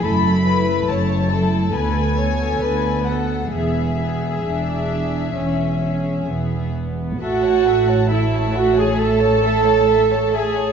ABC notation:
X:1
M:4/4
L:1/16
Q:1/4=67
K:A
V:1 name="Violin section"
b4 a4 g6 f2 | e12- e2 z2 | f4 e2 f g a6 g2 |]
V:2 name="Violin section"
A2 B2 c2 A2 B2 c2 B2 A2 | G12- G2 z2 | [Ae] [ca] [Ae] [ca] [Ae] [ca] [Ae] [ca] [Ae] [ca] [Ae] [ca] [Ae] [ca] [Ae] [ca] |]
V:3 name="Viola section"
[A,E]2 [A,E]4 [A,E]2 [B,A]2 [B,A]4 [B,A]2 | [B,G]2 [B,G]2 D4 C4 B,4 | F4 E2 F G A6 G2 |]
V:4 name="Cello section" clef=bass
F,,4 F,,4 D,,4 D,,4 | E,,4 E,,4 E,,4 E,,4 | A,,16 |]
V:5 name="Double bass section" clef=bass
F,,,4 F,,,4 D,,4 D,,4 | E,,,4 E,,,4 E,,,4 E,,,4 | A,,,16 |]